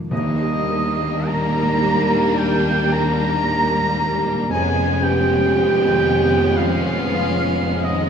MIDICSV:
0, 0, Header, 1, 12, 480
1, 0, Start_track
1, 0, Key_signature, -3, "major"
1, 0, Tempo, 1158301
1, 46, Time_signature, 4, 2, 24, 8
1, 527, Tempo, 1086957
1, 1487, Tempo, 1048951
1, 2447, Tempo, 1023891
1, 3643, End_track
2, 0, Start_track
2, 0, Title_t, "Clarinet"
2, 0, Program_c, 0, 71
2, 53, Note_on_c, 0, 75, 114
2, 528, Note_on_c, 0, 82, 112
2, 534, Note_off_c, 0, 75, 0
2, 1019, Note_on_c, 0, 79, 112
2, 1025, Note_off_c, 0, 82, 0
2, 1256, Note_on_c, 0, 82, 125
2, 1263, Note_off_c, 0, 79, 0
2, 1970, Note_off_c, 0, 82, 0
2, 1972, Note_on_c, 0, 80, 118
2, 2213, Note_on_c, 0, 79, 118
2, 2220, Note_off_c, 0, 80, 0
2, 2927, Note_on_c, 0, 77, 123
2, 2934, Note_off_c, 0, 79, 0
2, 3525, Note_on_c, 0, 75, 104
2, 3532, Note_off_c, 0, 77, 0
2, 3643, Note_off_c, 0, 75, 0
2, 3643, End_track
3, 0, Start_track
3, 0, Title_t, "Flute section"
3, 0, Program_c, 1, 73
3, 49, Note_on_c, 1, 75, 97
3, 511, Note_off_c, 1, 75, 0
3, 528, Note_on_c, 1, 82, 109
3, 1011, Note_on_c, 1, 79, 96
3, 1014, Note_off_c, 1, 82, 0
3, 1246, Note_off_c, 1, 79, 0
3, 1249, Note_on_c, 1, 82, 109
3, 1831, Note_off_c, 1, 82, 0
3, 1972, Note_on_c, 1, 80, 102
3, 2205, Note_off_c, 1, 80, 0
3, 2208, Note_on_c, 1, 79, 112
3, 2912, Note_off_c, 1, 79, 0
3, 2930, Note_on_c, 1, 77, 106
3, 3526, Note_off_c, 1, 77, 0
3, 3528, Note_on_c, 1, 75, 87
3, 3643, Note_off_c, 1, 75, 0
3, 3643, End_track
4, 0, Start_track
4, 0, Title_t, "Oboe"
4, 0, Program_c, 2, 68
4, 45, Note_on_c, 2, 75, 93
4, 528, Note_on_c, 2, 82, 104
4, 535, Note_off_c, 2, 75, 0
4, 1018, Note_on_c, 2, 79, 98
4, 1025, Note_off_c, 2, 82, 0
4, 1261, Note_on_c, 2, 82, 108
4, 1268, Note_off_c, 2, 79, 0
4, 1973, Note_off_c, 2, 82, 0
4, 1980, Note_on_c, 2, 80, 96
4, 2214, Note_on_c, 2, 79, 101
4, 2221, Note_off_c, 2, 80, 0
4, 2930, Note_on_c, 2, 77, 112
4, 2937, Note_off_c, 2, 79, 0
4, 3526, Note_on_c, 2, 75, 89
4, 3533, Note_off_c, 2, 77, 0
4, 3643, Note_off_c, 2, 75, 0
4, 3643, End_track
5, 0, Start_track
5, 0, Title_t, "French horn section"
5, 0, Program_c, 3, 60
5, 44, Note_on_c, 3, 51, 103
5, 509, Note_off_c, 3, 51, 0
5, 528, Note_on_c, 3, 70, 101
5, 1013, Note_off_c, 3, 70, 0
5, 1018, Note_on_c, 3, 67, 99
5, 1254, Note_off_c, 3, 67, 0
5, 1257, Note_on_c, 3, 70, 103
5, 1956, Note_off_c, 3, 70, 0
5, 1971, Note_on_c, 3, 68, 104
5, 2210, Note_off_c, 3, 68, 0
5, 2212, Note_on_c, 3, 67, 106
5, 2927, Note_on_c, 3, 65, 113
5, 2928, Note_off_c, 3, 67, 0
5, 3449, Note_off_c, 3, 65, 0
5, 3528, Note_on_c, 3, 63, 80
5, 3643, Note_off_c, 3, 63, 0
5, 3643, End_track
6, 0, Start_track
6, 0, Title_t, "Violin section"
6, 0, Program_c, 4, 48
6, 48, Note_on_c, 4, 62, 86
6, 1950, Note_off_c, 4, 62, 0
6, 1974, Note_on_c, 4, 61, 92
6, 3643, Note_off_c, 4, 61, 0
6, 3643, End_track
7, 0, Start_track
7, 0, Title_t, "Violin section"
7, 0, Program_c, 5, 48
7, 46, Note_on_c, 5, 58, 83
7, 1949, Note_off_c, 5, 58, 0
7, 1972, Note_on_c, 5, 59, 90
7, 3643, Note_off_c, 5, 59, 0
7, 3643, End_track
8, 0, Start_track
8, 0, Title_t, "Viola section"
8, 0, Program_c, 6, 48
8, 46, Note_on_c, 6, 55, 86
8, 1949, Note_off_c, 6, 55, 0
8, 1969, Note_on_c, 6, 56, 84
8, 3643, Note_off_c, 6, 56, 0
8, 3643, End_track
9, 0, Start_track
9, 0, Title_t, "Felt piano"
9, 0, Program_c, 7, 0
9, 0, Control_c, 7, 64, 127
9, 0, Note_on_c, 7, 51, 38
9, 0, Note_on_c, 7, 53, 41
9, 0, Note_on_c, 7, 56, 47
9, 0, Note_on_c, 7, 70, 43
9, 46, Note_off_c, 7, 53, 0
9, 47, Note_on_c, 7, 39, 76
9, 55, Note_off_c, 7, 51, 0
9, 55, Control_c, 7, 64, 0
9, 56, Note_off_c, 7, 70, 0
9, 57, Note_off_c, 7, 56, 0
9, 137, Control_c, 7, 64, 127
9, 166, Note_on_c, 7, 55, 59
9, 291, Note_on_c, 7, 70, 60
9, 360, Note_off_c, 7, 55, 0
9, 410, Note_on_c, 7, 55, 58
9, 482, Note_off_c, 7, 70, 0
9, 528, Note_on_c, 7, 46, 56
9, 602, Note_off_c, 7, 55, 0
9, 651, Note_on_c, 7, 44, 56
9, 724, Note_off_c, 7, 46, 0
9, 768, Note_on_c, 7, 55, 62
9, 772, Note_off_c, 7, 44, 0
9, 888, Note_on_c, 7, 46, 57
9, 963, Note_off_c, 7, 55, 0
9, 995, Note_off_c, 7, 39, 0
9, 1010, Note_on_c, 7, 55, 62
9, 1083, Note_off_c, 7, 46, 0
9, 1137, Note_on_c, 7, 46, 63
9, 1203, Note_off_c, 7, 55, 0
9, 1255, Note_on_c, 7, 70, 62
9, 1324, Note_off_c, 7, 46, 0
9, 1368, Note_on_c, 7, 55, 55
9, 1441, Note_off_c, 7, 70, 0
9, 1484, Note_on_c, 7, 46, 62
9, 1558, Note_off_c, 7, 55, 0
9, 1610, Note_on_c, 7, 44, 55
9, 1677, Note_off_c, 7, 46, 0
9, 1728, Note_off_c, 7, 44, 0
9, 1734, Note_on_c, 7, 55, 61
9, 1848, Note_on_c, 7, 46, 59
9, 1923, Note_off_c, 7, 55, 0
9, 1967, Note_on_c, 7, 41, 80
9, 1968, Note_off_c, 7, 46, 0
9, 1975, Control_c, 7, 64, 0
9, 2060, Control_c, 7, 64, 127
9, 2085, Note_on_c, 7, 56, 59
9, 2209, Note_on_c, 7, 71, 64
9, 2278, Note_off_c, 7, 56, 0
9, 2331, Note_on_c, 7, 56, 62
9, 2399, Note_off_c, 7, 71, 0
9, 2449, Note_on_c, 7, 53, 59
9, 2520, Note_off_c, 7, 56, 0
9, 2568, Note_on_c, 7, 51, 59
9, 2640, Note_off_c, 7, 53, 0
9, 2686, Note_on_c, 7, 56, 65
9, 2688, Note_off_c, 7, 51, 0
9, 2803, Note_on_c, 7, 53, 64
9, 2878, Note_off_c, 7, 56, 0
9, 2907, Note_off_c, 7, 41, 0
9, 2930, Note_on_c, 7, 41, 73
9, 2995, Note_off_c, 7, 53, 0
9, 3045, Note_on_c, 7, 56, 64
9, 3159, Note_on_c, 7, 71, 64
9, 3236, Note_off_c, 7, 56, 0
9, 3281, Note_on_c, 7, 56, 58
9, 3353, Note_off_c, 7, 71, 0
9, 3402, Note_on_c, 7, 53, 68
9, 3475, Note_off_c, 7, 56, 0
9, 3526, Note_on_c, 7, 51, 55
9, 3596, Note_off_c, 7, 53, 0
9, 3643, Note_off_c, 7, 41, 0
9, 3643, Note_off_c, 7, 51, 0
9, 3643, End_track
10, 0, Start_track
10, 0, Title_t, "Timpani"
10, 0, Program_c, 8, 47
10, 46, Note_on_c, 8, 51, 111
10, 754, Note_off_c, 8, 51, 0
10, 3643, End_track
11, 0, Start_track
11, 0, Title_t, "Cello section"
11, 0, Program_c, 10, 48
11, 46, Note_on_c, 10, 39, 86
11, 1949, Note_off_c, 10, 39, 0
11, 1967, Note_on_c, 10, 41, 88
11, 3643, Note_off_c, 10, 41, 0
11, 3643, End_track
12, 0, Start_track
12, 0, Title_t, "Double bass section"
12, 0, Program_c, 11, 48
12, 51, Note_on_c, 11, 39, 88
12, 1952, Note_off_c, 11, 39, 0
12, 1970, Note_on_c, 11, 29, 88
12, 3643, Note_off_c, 11, 29, 0
12, 3643, End_track
0, 0, End_of_file